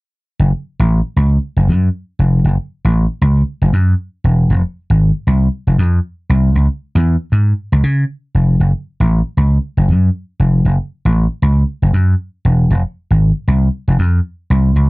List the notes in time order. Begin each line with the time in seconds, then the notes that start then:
0.40 F#1
0.80 A1
1.16 C#2
1.57 F#1
1.68 F#2
2.19 F1
2.45 F#1
2.85 A1
3.22 C#2
3.62 F#1
3.73 F#2
4.24 E1
4.50 F1
4.90 G#1
5.27 C2
5.67 F1
5.78 F2
6.30 C2
6.55 C#2
6.95 E2
7.32 G#2
7.72 C#2
7.83 C#3
8.35 F1
8.60 F#1
9.00 A1
9.37 C#2
9.77 F#1
9.88 F#2
10.40 F1
10.65 F#1
11.05 A1
11.42 C#2
11.82 F#1
11.93 F#2
12.45 E1
12.71 F1
13.11 G#1
13.48 C2
13.88 F1
13.99 F2
14.50 C2
14.76 C#2